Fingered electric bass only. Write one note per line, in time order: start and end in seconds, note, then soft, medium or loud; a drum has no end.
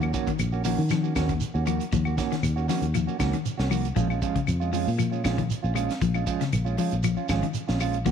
0.00 0.13 D#2 medium
0.28 muted fingered electric bass stroke soft
0.39 0.76 A#1 medium
0.79 1.14 D#3 medium
1.16 1.40 D#2 medium
1.55 1.79 D#2 medium
1.93 2.17 D#2 medium
2.43 2.67 D#2 medium
2.82 3.06 D#2 medium
3.20 3.33 C#2 medium
3.46 muted fingered electric bass stroke soft
3.59 3.95 C2 medium
3.96 4.21 A#1 medium
4.36 muted fingered electric bass stroke soft
4.48 4.85 F2 medium
4.88 5.23 A#2 medium
5.25 5.49 A#1 medium
5.64 5.88 A#1 medium
6.02 6.25 A#1 medium
6.53 6.77 A#1 medium
6.93 7.16 A#1 medium
7.29 7.42 G#1 medium
7.55 muted fingered electric bass stroke soft
7.69 8.04 A#1 medium
8.06 8.12 D#2 medium